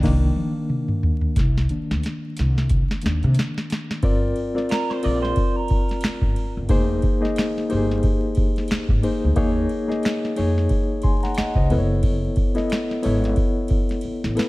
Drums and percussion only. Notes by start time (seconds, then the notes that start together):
0.03 kick, snare, crash
0.36 high tom
0.70 mid tom
0.88 mid tom
1.03 floor tom
1.21 floor tom
1.36 kick, snare, closed hi-hat
1.58 snare
1.69 closed hi-hat
1.91 snare
2.03 snare, closed hi-hat
2.37 snare, closed hi-hat
2.58 snare
2.69 kick, closed hi-hat
2.91 snare
3.02 closed hi-hat
3.06 snare
3.23 closed hi-hat
3.35 closed hi-hat
3.39 snare
3.58 snare
3.70 snare, closed hi-hat
3.91 snare
4.02 kick, ride
4.36 ride
4.58 snare
4.69 finger snap, snare, ride
4.91 snare
5.03 ride
5.25 snare
5.36 kick, ride
5.68 kick, ride
5.89 snare, ride
6.01 finger snap, snare, ride
6.22 kick
6.36 ride
6.69 kick, ride
7.02 kick, ride
7.25 snare
7.36 finger snap, snare, ride
7.58 snare
7.70 ride
7.91 snare
8.03 kick, ride
8.35 kick, ride
8.56 snare, ride
8.68 finger snap, snare, ride
8.89 kick
9.03 ride
9.36 kick, ride
9.69 ride
9.92 snare
10.03 finger snap, snare, ride
10.25 snare
10.36 ride
10.58 snare
10.69 kick, ride
11.02 kick, ride
11.23 snare, ride
11.35 finger snap, snare, ride
11.55 kick
11.70 ride
12.03 kick, ride
12.36 kick, ride
12.55 snare, ride
12.70 finger snap, snare, ride
12.91 snare
13.03 open hi-hat, ride
13.24 snare, ride
13.36 kick, ride
13.68 kick, ride
13.89 snare, ride
14.01 ride
14.24 snare
14.37 snare, ride